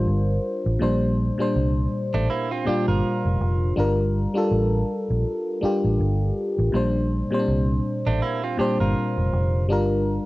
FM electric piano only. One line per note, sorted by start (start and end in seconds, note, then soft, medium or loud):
0.00 0.80 G3 medium
0.00 0.82 D4 medium
0.00 0.83 F4 medium
0.00 0.83 A#4 medium
0.00 0.68 C5 medium
0.79 1.29 A#2 medium
0.79 1.29 G3 medium
0.79 1.30 D4 medium
0.79 1.31 C5 medium
1.38 2.48 A#2 medium
1.38 2.48 G3 medium
1.38 2.49 D4 medium
1.38 2.50 C5 medium
2.65 3.62 A#2 medium
2.65 3.63 G3 medium
2.65 3.63 D4 medium
2.65 3.64 F4 medium
3.76 4.25 G3 medium
3.76 4.26 D4 medium
3.76 4.26 F4 medium
3.76 4.27 A#4 medium
4.34 5.44 G3 medium
4.34 5.45 D4 medium
4.34 5.45 F4 medium
4.34 5.46 A4 medium
5.61 6.58 G3 medium
5.61 6.59 D4 medium
5.61 6.60 F4 medium
5.61 6.60 G4 medium
6.72 7.21 A#2 medium
6.72 7.22 G3 medium
6.72 7.23 D4 medium
6.72 7.23 C5 medium
7.31 8.41 A#2 medium
7.31 8.41 G3 medium
7.31 7.38 C4 medium
7.31 8.42 C5 medium
7.39 8.45 D4 medium
8.57 9.55 A#2 medium
8.57 9.55 G3 medium
8.57 9.56 D4 medium
8.57 9.57 C5 medium
9.69 10.18 G3 medium
9.69 10.18 D4 medium
9.69 10.19 F4 medium
9.69 10.20 A#4 medium